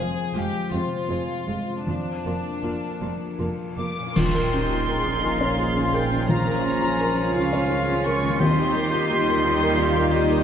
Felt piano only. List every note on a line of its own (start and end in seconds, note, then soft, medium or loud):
0.00 1.83 F2 medium
0.00 0.59 C5 soft
0.36 0.95 G#3 soft
0.72 1.32 C3 soft
1.09 1.71 C5 soft
1.47 1.87 G#3 soft
1.87 4.13 F2 soft
2.26 2.87 A#4 soft
2.63 3.24 A#3 soft
3.02 3.63 F3 soft
3.40 4.02 A#4 soft
3.79 4.17 A#3 soft
4.16 6.25 A#1 medium
4.34 4.64 A#4 soft
4.54 4.82 C#4 medium
4.71 5.00 F4 soft
4.88 5.17 A#4 medium
5.06 5.35 C#4 soft
5.24 5.52 F4 medium
5.41 5.70 C#5 medium
5.59 5.87 F4 soft
5.76 6.05 C#4 soft
5.94 6.22 A#4 medium
6.12 6.40 C#4 soft
6.29 8.36 A#1 medium
6.47 6.75 A#4 soft
6.64 6.93 C#4 soft
6.82 7.11 F4 medium
7.00 7.28 A#4 medium
7.17 7.45 C#4 soft
7.36 7.63 F4 medium
7.53 7.81 C#5 medium
7.70 7.98 F4 medium
7.89 8.16 C#4 medium
8.06 8.34 A#4 medium
8.23 8.40 C#4 medium
8.39 10.44 D#2 medium
8.58 8.86 G4 medium
8.75 9.04 A#3 medium
8.93 9.21 F4 medium
9.10 9.38 G4 medium
9.29 9.56 A#3 medium
9.45 9.73 F4 medium
9.63 9.90 A#4 medium
9.79 10.07 F4 medium
9.96 10.24 A#3 medium
10.13 10.41 G4 medium
10.30 10.44 A#3 medium